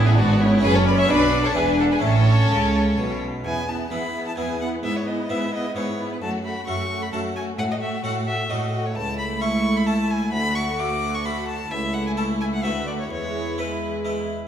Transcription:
Already playing: A1 A2 B3 E4
0.05 E4 G#4 E5
0.16 G#1 G#2 D4 F#4 D5
0.39 C#4 E4 C#5
0.59 C#4 F#4 G#4 G#5
0.63 F#1 F#2 C#4 B4
0.74 A4 C#5 A5
0.86 B4 D5 B5
0.98 C#5 E5 C#6
1.05 B3 D4 F#4 B5
1.09 B1 B2 D4 B4 D5
1.44 A4 C#5 A5
1.51 B3 D4 E4
1.56 E1 E2 D4 G#4 B4 G#5
1.80 F#4 A4 F#5
1.92 G#4 B4 G#5
1.98 A3 C#4 E4
2.03 A1 A2 C#4 A4 C#5 A5
2.50 C#2 C#3
2.97 B1 B2
3.44 E2 B3 E4 G#4 G#5
3.68 B3 E4 G#4 A5
3.91 E2 B3 E4 G#4 B5
4.14 B3 E4 G#4
4.27 A5
4.37 E2 B3 E4 G#4 G#5
4.60 B3 E4 G#4 F#5
4.83 G#2 G#3 B3 E4 G#4 E5
4.96 C#5
5.06 B3 E4 G#4 D#5
5.29 G#2 B3 E4 G#4 E5
5.52 B3 E4 G#4 D#5
5.75 G#2 B3 E4 G#4 C#5
5.98 B3 E4 G#4
6.12 B4
6.21 F#2 A3 F#4 A4 A5
6.44 A3 F#4 A4 B5
6.67 F#2 A3 F#4 A4 C#6
6.90 A3 F#4 A4
7.02 B5
7.12 F#2 A3 F#4 A4 A5
7.35 A3 F#4 A4 G#5
7.58 A2 A3 F#4 A4 F#5
7.71 D#5
7.81 A3 F#4 A4 E5
8.03 A2 A3 F#4 A4 F#5
8.26 A3 F#4 A4 E5
8.49 A2 A3 F#4 A4 D#5
8.72 A3 F#4 A4
8.86 C#5
8.95 C#2 A3 E4 A4 A5
9.18 B5
9.41 A3 E4 A4 C#6
9.77 B5
9.86 A3 E4 A4 A5
10.10 G#5
10.32 D2 F#4 B5
10.55 C#6
10.79 A3 F#4 A4 D6
11.14 C#6
11.25 A3 F#4 A4 B5
11.48 A5
11.71 C#2 A3 E4 A4 E5
11.93 F#5
12.07 G#5
12.17 A3 E4 A4 A5
12.41 G#5
12.54 F#5
12.63 D2 A3 F#4 B4 E5
12.87 D5
12.99 C#5
13.10 E2 G#3 E4 C#5
13.58 G#3 E4 B4
14.05 G#3 E4 B4

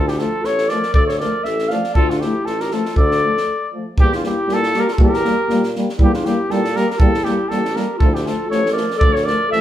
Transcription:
Already playing: D2
0.07 E4 G4, snare
0.17 F3 A3 F4 A4, snare
0.41 A1 A4 C#5, snare
0.58 snare
0.69 F3 A3 A#4 D5, snare
0.83 snare
0.93 D2 A4 D5, kick
1.07 A4 C#5, snare
1.20 F3 A3 A#4 D5, snare
1.44 A1 A4 E5, snare
1.59 snare
1.68 F3 A3 D5 F5, snare
1.84 snare
1.94 D2 F4 A4, kick
2.10 D4 F4, snare
2.20 F3 A3 E4 G4, snare
2.45 A1 F4 A4, snare
2.60 G4 A#4, snare
2.71 F3 A3 F4 A4, snare
2.85 snare
2.95 D2 A4 D5, kick
3.11 snare
3.23 F3 A3
3.37 snare
3.73 F3 A3
3.97 E2 G3 A#3 E4 G4, kick
4.12 D4 F4, snare
4.23 G3 A#3 E4 G4, snare
4.47 A#2 G3 A#3, snare
4.53 E4 A4
4.63 snare
4.74 G3 A#3 G4, snare
4.80 A#4
4.88 F4, snare
4.92 A4
4.98 E2 G3 A#3 G4, kick
5.03 A#4
5.13 snare
5.24 G3 A#3, snare
5.49 A#2 G3 A#3, snare
5.63 snare
5.75 G3 A#3, snare
5.89 snare
5.97 E2 G3 A#3 E4, kick
6.03 G4
6.13 D4 F4, snare
6.23 G3 A#3 E4 G4, snare
6.47 A#2 G3 A#3 E4 A4, snare
6.64 snare
6.72 G3 G4 A#4, snare
6.76 A#3
6.86 G4
6.90 A#4, snare
6.98 E2 G3 A#3 E4 A4, kick
7.14 snare
7.22 A#3 E4 G4, snare
7.27 G3
7.48 A1 G3 A#3 E4 A4, snare
7.65 snare
7.70 G4
7.75 G3 A#3 A#4, snare
7.97 D2 A3 F4 A4, kick
8.02 F3
8.09 E4
8.14 G4, snare
8.22 F3 F4
8.26 A3 A4, snare
8.47 A1 A4 C#5
8.51 F3 A3, snare
8.66 snare
8.73 F3 A#4 D5
8.77 A3, snare
8.90 snare
8.97 A4 D5
9.01 D2 F3 A3, kick
9.12 A4 C#5, snare
9.22 A#4 D5
9.26 F3 A3, snare
9.47 F3 A4 E5
9.52 A1 A3, snare

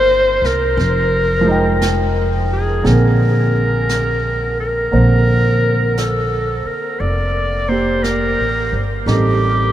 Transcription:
Already playing: G1 D#3 A#3 C4 D4 D#4 F4 C5
0.42 C2, snare
0.46 A#4
0.77 F1, brush sweep, snare
1.41 F3 G#3
1.48 D#4 G5
1.82 brush sweep, snare, hi-hat pedal
2.53 G#4
2.83 A#1 D3 A#3 C4 G#4 A#4, brush sweep, snare
3.89 brush sweep, snare, hi-hat pedal
4.60 A#4
4.91 A#1 D3 A#3 C4 C5, brush sweep
5.98 A4, brush sweep, snare, hi-hat pedal
6.65 A#4, muted upright bass stroke
7.00 F1 D5, brush sweep
7.68 A#3 G4 C5
8.03 A#4, brush sweep, snare, hi-hat pedal
8.39 A1
8.72 G1
9.06 A1 G3 C4 D#4 G4 A4, brush sweep, snare

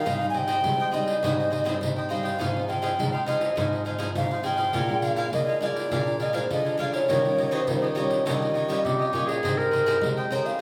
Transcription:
Already playing: F5
0.05 G#2 G3 C4 D#4 G#4 C5 D#5 G5, pandeiro
0.21 G3 C4 D#4, pandeiro
0.30 G#4 G#5
0.34 C5 D#5 G5, pandeiro
0.48 G#4 C5 D#5 G5, pandeiro
0.64 D#3 G3 G#3 C4 D#4, pandeiro
0.80 C5 D#5 G5, pandeiro
0.92 G3 C4 D#4 G#4 C5 D#5 G5, pandeiro
1.08 pandeiro
1.22 G#2 G3 C4 D#4 G#4 C5 D#5 G5, pandeiro
1.40 pandeiro
1.50 G#4 C5 D#5 G5, pandeiro
1.64 G3 C4 D#4 G#4 C5 D#5 G5, pandeiro
1.81 G#2 D#3 D#5, pandeiro
1.96 C5 D#5 G5, pandeiro
2.09 G3 C4 D#4 G#4 C5 D#5 F5 G5, pandeiro
2.23 C5 D#5 G5, pandeiro
2.39 G#2 F3 C4 D#4 G#4 C5 F5, pandeiro
2.56 F3 C4 D#4, pandeiro
2.67 D#4 G#4 C5 F5 G5, pandeiro
2.82 D#4 G#4 C5 F5, pandeiro
2.99 G#2 F3 G#3 C4 D#4, pandeiro
3.12 G#4 C5 F5, pandeiro
3.26 F3 C4 D#4 G#4 C5 D#5 F5, pandeiro
3.41 pandeiro
3.56 G#2 F3 C4 D#4 G#4 C5 F5, pandeiro
3.73 pandeiro
3.85 D#4 G#4 C5 F5, pandeiro
3.98 F3 C4 D#4 G#4 C5 F5, pandeiro
4.15 G#2 F5, pandeiro
4.31 G#4 C5 F5, pandeiro
4.43 F3 C4 D#4 G#4 C5 F5 G5, pandeiro
4.56 G#4 C5 F5, pandeiro
4.73 A#2 G#3 D4 F4 A#4 F5 G#5, pandeiro
4.89 G#3 D4 F4, pandeiro
5.02 D4 A#4 F5 G#5, pandeiro
5.16 D4 A#4 F5 G#5, pandeiro
5.33 F3 G#3 A#3 D4 F4 D#5, pandeiro
5.47 A#4 F5 G#5, pandeiro
5.61 G#3 D4 F4 A#4 D#5 F5 G#5, pandeiro
5.66 D5
5.76 pandeiro
5.91 A#2 G#3 D4 F4 A#4 F5 G#5, pandeiro
6.07 pandeiro
6.19 D4 A#4 D#5 F5 G#5, pandeiro
6.33 G#3 D4 F4 A#4 C5 F5 G#5, pandeiro
6.51 D3 F3 D#5, pandeiro
6.65 A#4 F5 G#5, pandeiro
6.78 G#3 D4 F4 A#4 F5 G#5, pandeiro
6.92 A#4 C#5 F5 G#5, pandeiro
7.08 D#3 G3 C#4 D#4 F4 G4 C#5 D#5, pandeiro
7.24 G3 C#4 F4, pandeiro
7.38 D#4 G4 C#5 D#5, pandeiro
7.51 D#4 G4 C5 C#5 D#5, pandeiro
7.67 A#2 D#3 G3 C#4 F4, pandeiro
7.82 G4 C#5 D#5, pandeiro
7.95 G3 C#4 D#4 F4 G4 C#5 D5 D#5, pandeiro
8.02 C#5
8.10 pandeiro
8.25 D#3 G3 C#4 D#4 F4 G4 C#5 D#5, pandeiro
8.42 pandeiro
8.54 D#4 G4 C#5 D#5, pandeiro
8.68 G3 C#4 D#4 F4 G4 C#5 D#5, pandeiro
8.84 A#2 C3 G4, pandeiro
8.99 G4 C#5 D#5, pandeiro
9.13 A#2 G3 C#4 D#4 F4 G4 C#5 D#5, pandeiro
9.27 G4 G#4 C#5 D#5, pandeiro
9.43 G#2 G#3 C4 G4 G#4 A#4 C5 D#5 G5, pandeiro
9.57 C4 G4 A#4, pandeiro
9.71 G#4 C5 D#5 G5, pandeiro
9.86 G#4 C5 D#5 G5, pandeiro
10.01 D#3 G#3 C4 G4 A#4, pandeiro
10.17 C5 D#5 G5, pandeiro
10.31 C4 G4 G#4 A#4 C5 C#5 D#5 G5, pandeiro
10.46 F5, pandeiro

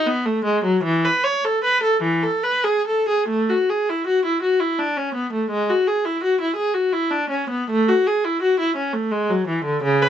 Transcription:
0.06 B3
0.26 A3
0.45 G#3
0.64 F#3
0.83 E3
1.05 B4
1.24 C#5
1.45 A4
1.64 B4
1.83 A4
2.02 E3
2.23 A4
2.43 B4
2.64 G#4
2.87 A4
3.08 G#4
3.28 A3
3.49 F#4
3.70 G#4
3.89 E4
4.07 F#4
4.25 E4
4.42 F#4
4.60 E4
4.79 D4
4.97 C#4
5.15 B3
5.33 A3
5.50 G#3
5.69 F#4
5.87 G#4
6.05 E4
6.23 F#4
6.41 E4
6.56 G#4
6.74 F#4
6.93 E4
7.11 D4
7.30 C#4
7.50 B3
7.70 A3
7.89 F#4
8.07 G#4
8.25 E4
8.42 F#4
8.60 E4
8.76 C#4
8.93 A3
9.12 G#3
9.30 F#3
9.47 E3
9.65 D3
9.83 C#3
10.02 B4

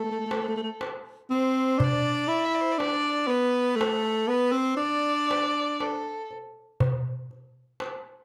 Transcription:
Already playing: A4
0.04 A3
0.11 A3
0.19 A3
0.26 A3
0.31 A3, darbuka tek
0.41 A3
0.48 A3
0.56 A3
0.63 A3
0.81 darbuka tek
1.30 C4 C5, darbuka ka
1.78 D4, darbuka dum
1.83 D5
2.28 E4, darbuka ka
2.45 E5
2.54 D5
2.61 C5
2.72 D5
2.78 D4 D5, darbuka tek
3.27 B3 B4
3.76 A3
3.80 A4, darbuka tek
4.28 B3 B4
4.52 C4
4.57 C5
4.77 D4 D5
4.81 darbuka ka
5.31 darbuka tek
5.80 A4, darbuka tek
6.31 darbuka ka
6.80 darbuka dum
7.31 darbuka ka
7.80 darbuka tek

